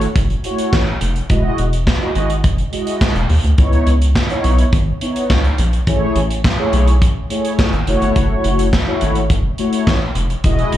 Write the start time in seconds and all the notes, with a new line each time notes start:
0.01 closed hi-hat
0.16 F#1, kick, closed hi-hat
0.30 closed hi-hat
0.44 G#3 E4 F#4 C#5, closed hi-hat
0.51 A3
0.58 closed hi-hat
0.73 A1, kick, snare, clap
1.01 F1, closed hi-hat
1.16 closed hi-hat
1.29 E1 G#3 E4 F#4 D#5, kick, closed hi-hat
1.58 E1, closed hi-hat
1.73 closed hi-hat
1.87 kick, snare, clap
2.01 G#3 E4 F#4 D#5
2.15 G#1, closed hi-hat
2.30 closed hi-hat
2.44 F#1, kick, closed hi-hat
2.58 closed hi-hat
2.72 G#3 E4 F#4 D#5, closed hi-hat
2.87 closed hi-hat
3.01 kick, snare, clap
3.15 E1, closed hi-hat
3.29 D#2, open hi-hat
3.44 D2, closed hi-hat
3.58 C#2 B3 D#4 E4 C#5, kick, closed hi-hat
3.73 closed hi-hat
3.87 C#2, closed hi-hat
4.02 closed hi-hat
4.15 kick, snare, clap
4.30 B3 D#4 E4 C#5, closed hi-hat
4.44 B1, closed hi-hat
4.58 closed hi-hat
4.73 G#1, kick, closed hi-hat
5.01 B3 D#4 E4 C#5, closed hi-hat
5.16 closed hi-hat
5.30 C#2, kick, snare, clap
5.44 closed hi-hat
5.58 A#1, closed hi-hat
5.73 closed hi-hat
5.87 A1 A3 E4 G#4 C#5, kick, closed hi-hat
6.16 A1, closed hi-hat
6.31 closed hi-hat
6.44 kick, snare, clap
6.58 A3 E4 G#4 C#5
6.73 B1, closed hi-hat
6.87 closed hi-hat
7.02 A1, kick, closed hi-hat
7.30 A3 E4 G#4 C#5, closed hi-hat
7.45 closed hi-hat
7.59 kick, snare, clap
7.73 G#1, closed hi-hat
7.87 F#1 A3 E4 F#4 C#5, closed hi-hat
8.02 G1, closed hi-hat
8.16 F#1, kick, closed hi-hat
8.44 F#1, closed hi-hat
8.59 closed hi-hat
8.73 kick, snare, clap
8.87 A3 E4 F#4 C#5
9.01 G#1, closed hi-hat
9.15 closed hi-hat
9.30 F#1, kick, closed hi-hat
9.58 A3 E4 F#4 C#5, closed hi-hat
9.73 closed hi-hat
9.87 A1, kick, snare, clap
10.15 F1, closed hi-hat
10.30 closed hi-hat
10.44 E1 G#3 E4 F#4 D#5, kick, closed hi-hat
10.59 closed hi-hat
10.72 E1, closed hi-hat